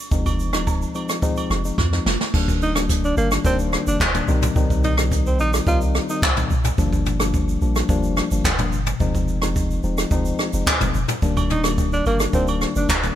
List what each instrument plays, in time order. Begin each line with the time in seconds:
0.11 sub bass F1, tine electric piano F3 G#3 C4 D#4, kick, shaker
0.26 kick, high agogo, shaker
0.39 shaker
0.53 sub bass D#1, tine electric piano F3 G#3 C4 D#4, cross-stick, high agogo, shaker
0.67 kick, low woodblock, shaker
0.82 shaker
0.95 tine electric piano F3 G#3 C4 D#4, high agogo, shaker
1.09 cross-stick, shaker
1.22 tine electric piano F3 G#3 C4 D#4, kick, shaker
1.37 high agogo, shaker
1.50 sub bass F1, cross-stick, shaker
1.65 tine electric piano F3 G#3 C4 D#4, shaker
1.78 sub bass F2, kick, snare, high agogo
1.93 tine electric piano F3 G#3 C4 D#4, snare
2.06 sub bass F1, snare, high agogo
2.21 snare
2.34 sub bass D#1, tine electric piano D#3 G3 A#3 D4, kick, crash
2.48 kick, shaker
2.62 tenor saxophone D#4, open hi-hat, shaker
2.75 tine electric piano D#3 G3 A#3 D4, cross-stick, shaker
2.89 kick, hi-hat pedal, shaker
3.04 tenor saxophone D4, shaker
3.17 sub bass G1, tine electric piano D#3 G3 A#3 D4, tenor saxophone A#3, shaker
3.31 cross-stick, shaker
3.44 sub bass D#1, tine electric piano D#3 G3 A#3 D4, tenor saxophone C4, kick, shaker
3.59 shaker
3.73 cross-stick, shaker
3.87 sub bass F1, tine electric piano D#3 G3 A#3 D4, tenor saxophone D4, shaker
4.00 sub bass D#1, kick, cross-stick, clap, shaker
4.14 tine electric piano D#3 G3 A#3 D4, mid tom, shaker
4.28 sub bass C2, tine electric piano D#3 G3 C4 D#4, shaker
4.42 mid tom, shaker
4.56 sub bass C2, tine electric piano D#3 G3 C4 D#4, kick, shaker
4.70 kick, shaker
4.84 tenor saxophone D#4, mid tom, open hi-hat, shaker
4.97 tine electric piano D#3 G3 C4 D#4, cross-stick, shaker
5.12 kick, hi-hat pedal, shaker
5.26 tenor saxophone C4, shaker
5.39 sub bass A#1, tine electric piano D#3 G3 C4 D#4, tenor saxophone D#4, shaker
5.53 cross-stick, shaker
5.67 sub bass C2, tine electric piano D#3 G3 C4 D#4, tenor saxophone F4, kick, shaker
5.81 shaker
5.95 cross-stick, open hi-hat, shaker
6.09 tine electric piano D#3 G3 C4 D#4, tenor saxophone D#4, shaker
6.22 sub bass C2, kick, cross-stick, clap, hi-hat pedal, shaker
6.37 tine electric piano D#3 G3 C4 D#4, mid tom, shaker
6.50 sub bass C2, shaker
6.64 mid tom, shaker
6.78 sub bass G1, tine electric piano F3 G3 A#3 D4, kick, shaker
6.93 kick, shaker
7.06 mid tom, shaker
7.20 tine electric piano F3 G3 A#3 D4, cross-stick, shaker
7.34 kick, shaker
7.49 shaker
7.62 sub bass A#1, tine electric piano F3 G3 A#3 D4, shaker
7.76 cross-stick, shaker
7.89 sub bass F1, tine electric piano F3 G3 A#3 D4, kick, shaker
8.03 shaker
8.17 cross-stick, open hi-hat, shaker
8.31 sub bass G1, tine electric piano F3 G3 A#3 D4, shaker
8.44 sub bass F1, kick, cross-stick, clap, hi-hat pedal, shaker
8.58 tine electric piano F3 G3 A#3 D4, mid tom, shaker
8.72 sub bass G1, shaker
8.86 mid tom, shaker
9.00 sub bass F1, tine electric piano F3 G#3 C4 D#4, kick, shaker
9.15 kick, shaker
9.28 shaker
9.42 tine electric piano F3 G#3 C4 D#4, cross-stick, shaker
9.56 kick, shaker
9.71 shaker
9.83 sub bass D#1, tine electric piano F3 G#3 C4 D#4, shaker
9.98 cross-stick, shaker
10.11 sub bass F1, tine electric piano F3 G#3 C4 D#4, kick, shaker
10.25 shaker
10.39 cross-stick, open hi-hat, shaker
10.53 sub bass F1, tine electric piano F3 G#3 C4 D#4, shaker
10.67 kick, cross-stick, clap, hi-hat pedal, shaker
10.81 sub bass F1, tine electric piano F3 G#3 C4 D#4, mid tom, shaker
10.94 sub bass F1, shaker
11.08 mid tom, shaker
11.22 sub bass D#1, tine electric piano D#3 G3 A#3 D4, kick, shaker
11.37 kick, high agogo, shaker
11.50 tenor saxophone D#4, mid tom, shaker
11.64 tine electric piano D#3 G3 A#3 D4, cross-stick, high agogo, shaker
11.78 kick, shaker
11.93 tenor saxophone D4, shaker
12.06 sub bass G1, tine electric piano D#3 G3 A#3 D4, tenor saxophone A#3, high agogo, shaker
12.20 cross-stick, shaker
12.33 sub bass D#1, tine electric piano D#3 G3 A#3 D4, tenor saxophone C4, kick, shaker
12.48 high agogo, shaker
12.61 cross-stick, open hi-hat, shaker
12.76 sub bass F1, tine electric piano D#3 G3 A#3 D4, tenor saxophone D4, shaker
12.89 sub bass D#1, kick, cross-stick, clap, hi-hat pedal, high agogo, low woodblock, shaker
13.03 tine electric piano D#3 G3 A#3 D4, mid tom, shaker